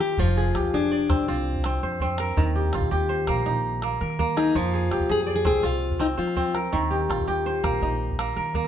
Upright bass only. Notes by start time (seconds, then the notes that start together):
0.18 F1
0.55 C2
0.73 F1
1.11 C2
1.28 C2
1.83 F2
2.37 D#2
2.74 A#1
2.91 D#2
3.28 A#1
3.46 A#1
4.01 D#3
4.55 F2
4.91 C2
5.10 F2
5.46 C2
5.64 C2
6.18 F3
6.73 D#2
7.09 A#1
7.27 D#2
7.63 A#1
7.82 A#1
8.36 D#3